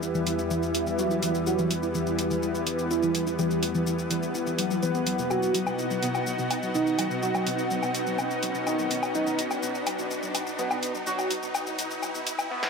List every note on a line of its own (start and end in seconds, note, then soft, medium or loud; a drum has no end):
0.00 5.27 E2 medium
0.00 5.27 E3 medium
0.00 5.27 G3 medium
0.00 12.47 B3 medium
0.00 5.31 E4 medium
0.00 0.08 E4 medium
0.00 5.31 B4 medium
0.00 2.84 E5 medium
0.00 riser medium
0.00 shaker medium
0.15 0.24 E3 loud
0.15 shaker soft
0.27 0.36 E3 medium
0.27 open hi-hat medium
0.27 shaker medium
0.39 0.44 E4 medium
0.39 shaker soft
0.51 0.60 E3 loud
0.51 shaker medium
0.63 shaker soft
0.75 0.80 E4 medium
0.75 open hi-hat loud
0.75 shaker medium
0.87 0.96 E3 loud
0.87 shaker soft
0.99 1.08 E3 medium
0.99 1.32 F#4 loud
0.99 shaker medium
1.11 1.16 E4 medium
1.11 shaker soft
1.23 1.32 E3 loud
1.23 open hi-hat medium
1.23 shaker medium
1.35 1.44 E3 medium
1.35 shaker soft
1.47 1.53 E4 medium
1.47 1.72 F#4 loud
1.47 shaker medium
1.59 1.68 E3 loud
1.59 shaker soft
1.71 open hi-hat loud
1.71 shaker medium
1.83 1.89 E4 medium
1.83 shaker soft
1.95 2.04 E3 loud
1.95 shaker medium
2.07 2.16 E3 medium
2.07 shaker soft
2.19 2.24 E4 medium
2.19 open hi-hat loud
2.19 shaker medium
2.31 2.40 E3 loud
2.31 shaker soft
2.43 shaker medium
2.55 2.60 E4 medium
2.55 shaker soft
2.67 2.76 E3 loud
2.67 12.51 F#5 medium
2.67 open hi-hat loud
2.67 shaker medium
2.79 2.88 E3 medium
2.79 shaker soft
2.91 2.96 E4 medium
2.91 3.24 E4 loud
2.91 shaker medium
3.03 3.12 E3 loud
3.03 shaker soft
3.15 3.24 E3 medium
3.15 open hi-hat loud
3.15 shaker medium
3.27 3.32 E4 medium
3.27 shaker soft
3.39 3.48 E3 loud
3.39 3.64 G4 loud
3.39 shaker medium
3.51 3.60 E3 medium
3.51 shaker soft
3.63 3.68 E4 medium
3.63 open hi-hat loud
3.63 shaker medium
3.75 3.84 E3 loud
3.75 shaker soft
3.87 3.96 E3 medium
3.87 shaker medium
3.99 4.05 E4 medium
3.99 shaker soft
4.11 4.20 E3 loud
4.11 open hi-hat medium
4.11 shaker medium
4.23 shaker soft
4.35 4.40 E4 medium
4.35 shaker medium
4.47 4.56 E3 loud
4.47 shaker soft
4.59 4.70 F#3 medium
4.59 open hi-hat loud
4.59 shaker medium
4.71 4.80 F#3 medium
4.71 shaker soft
4.83 4.94 E3 loud
4.83 5.16 B4 loud
4.83 shaker medium
4.95 5.06 B3 medium
4.95 shaker soft
5.07 5.16 F#3 medium
5.07 open hi-hat loud
5.07 shaker medium
5.19 5.29 B2 medium
5.19 shaker soft
5.31 5.40 B2 loud
5.31 12.47 B2 medium
5.31 12.51 D#4 medium
5.31 12.47 D#4 medium
5.31 5.56 F#4 loud
5.31 12.47 F#4 medium
5.31 low woodblock medium
5.31 shaker medium
5.43 5.52 B2 medium
5.43 shaker soft
5.55 5.66 F#3 medium
5.55 open hi-hat loud
5.55 shaker medium
5.67 5.76 B2 loud
5.67 low woodblock medium
5.67 shaker soft
5.79 5.88 B2 medium
5.79 shaker medium
5.91 6.02 F#3 medium
5.91 shaker soft
6.03 6.12 B2 loud
6.03 open hi-hat medium
6.03 shaker medium
6.15 6.24 B2 medium
6.15 12.51 B4 medium
6.15 low woodblock medium
6.15 shaker soft
6.27 6.38 F#3 medium
6.27 shaker medium
6.39 6.48 B2 loud
6.39 shaker soft
6.51 open hi-hat loud
6.51 low woodblock medium
6.51 shaker medium
6.63 6.74 F#3 medium
6.63 shaker soft
6.75 6.84 B2 loud
6.75 7.08 D#4 loud
6.75 shaker medium
6.87 6.96 B2 medium
6.87 shaker soft
6.99 7.10 F#3 medium
6.99 open hi-hat loud
6.99 low woodblock medium
6.99 shaker medium
7.11 7.20 B2 loud
7.11 shaker soft
7.23 7.32 B2 medium
7.23 7.48 F#4 loud
7.23 shaker medium
7.35 7.46 F#3 medium
7.35 low woodblock medium
7.35 shaker soft
7.47 7.56 B2 loud
7.47 open hi-hat loud
7.47 shaker medium
7.59 7.68 B2 medium
7.59 shaker soft
7.71 7.82 F#3 medium
7.71 shaker medium
7.83 7.92 B2 loud
7.83 low woodblock medium
7.83 shaker soft
7.95 open hi-hat medium
7.95 shaker medium
8.07 8.18 F#3 medium
8.07 shaker soft
8.19 8.28 B2 loud
8.19 low woodblock medium
8.19 shaker medium
8.31 8.40 B2 medium
8.31 shaker soft
8.43 8.54 F#3 medium
8.43 open hi-hat loud
8.43 shaker medium
8.55 8.64 B2 loud
8.55 shaker soft
8.67 8.76 B2 medium
8.67 9.00 D#4 loud
8.67 low woodblock medium
8.67 shaker medium
8.79 8.90 F#3 medium
8.79 shaker soft
8.91 9.00 B2 loud
8.91 open hi-hat medium
8.91 shaker medium
9.03 9.12 B2 medium
9.03 low woodblock medium
9.03 shaker soft
9.15 9.26 F#3 medium
9.15 9.40 D#4 loud
9.15 shaker medium
9.27 9.36 B2 loud
9.27 shaker soft
9.39 9.48 B2 medium
9.39 open hi-hat loud
9.39 shaker medium
9.51 9.62 F#3 medium
9.51 low woodblock medium
9.51 shaker soft
9.63 9.72 B2 loud
9.63 shaker medium
9.75 shaker soft
9.87 9.98 F#3 medium
9.87 open hi-hat medium
9.87 low woodblock medium
9.87 shaker medium
9.99 10.08 B2 loud
9.99 shaker soft
10.11 10.20 B2 medium
10.11 shaker medium
10.23 10.34 F#3 medium
10.23 shaker soft
10.35 10.44 B2 medium
10.35 open hi-hat loud
10.35 low woodblock medium
10.35 shaker medium
10.47 10.56 B2 medium
10.47 shaker soft
10.59 10.70 F#3 medium
10.59 10.92 B3 loud
10.59 shaker medium
10.71 10.80 B2 loud
10.71 low woodblock medium
10.71 shaker soft
10.83 open hi-hat medium
10.83 shaker medium
10.95 11.06 F#3 medium
10.95 shaker soft
11.07 11.16 B2 loud
11.07 11.32 F#4 loud
11.07 shaker medium
11.19 11.28 B2 medium
11.19 low woodblock medium
11.19 shaker soft
11.31 11.42 F#3 medium
11.31 open hi-hat loud
11.31 shaker medium
11.43 11.52 B2 loud
11.43 shaker soft
11.55 11.64 B2 medium
11.55 low woodblock medium
11.55 shaker medium
11.67 11.78 F#3 medium
11.67 shaker soft
11.79 11.88 B2 loud
11.79 open hi-hat medium
11.79 shaker medium
11.91 12.00 B2 medium
11.91 shaker soft
12.03 12.14 F#3 medium
12.03 low woodblock medium
12.03 shaker medium
12.15 12.24 B2 loud
12.15 shaker soft
12.27 12.38 B2 medium
12.27 open hi-hat loud
12.27 shaker medium
12.39 12.48 B2 medium
12.39 low woodblock medium
12.39 shaker soft
12.51 12.70 B3 loud
12.63 snare medium